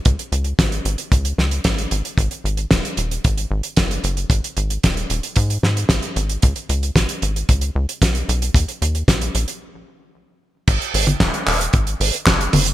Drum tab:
CC |----------------|----------------|----------------|----------------|
HH |xxxxxxxxxx-xxxxx|xxxxxxxxxx-xxxxx|xxxxxxxxxx-xxxxx|xxxxxxxxxx-xxxxx|
CP |----------------|----------------|----------------|----------------|
SD |----o-----o-o---|----o-------o---|----o-----o-o---|----o-------o---|
T1 |----------------|----------------|----------------|----------------|
BD |o---o---o---o---|o---o---o---o---|o---o---o---o---|o---o---o---o---|

CC |----------------|x---------------|
HH |xxxxxxxx--------|xxoxxxoxxxoxxxox|
CP |----------------|----x-x-----x---|
SD |----o-----------|----o-------o---|
T1 |----------------|---o----------o-|
BD |o---o-----------|o---o---o---o---|